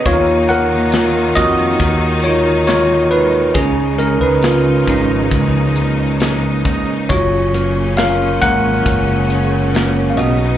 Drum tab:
HH |xxxxxxxx|xxxxxxxx|xxxxxxxx|
SD |--o---o-|--o---o-|--o---o-|
BD |o--oo---|o--oo--o|o--oo---|